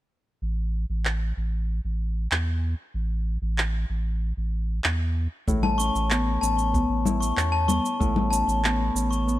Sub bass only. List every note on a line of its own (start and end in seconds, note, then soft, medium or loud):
0.42 0.85 A1 medium
0.90 1.33 A1 loud
1.37 1.80 A1 medium
1.85 2.27 A1 medium
2.32 2.75 E2 medium
2.94 3.38 A1 medium
3.42 3.85 A1 loud
3.90 4.33 A1 medium
4.37 4.80 A1 medium
4.85 5.28 E2 medium
5.48 5.91 A1 medium
5.95 6.38 A1 loud
6.42 6.85 A1 medium
6.89 7.32 A1 medium
7.37 7.80 E2 medium
8.01 8.44 A1 medium
8.48 8.91 A1 loud
8.95 9.38 A1 medium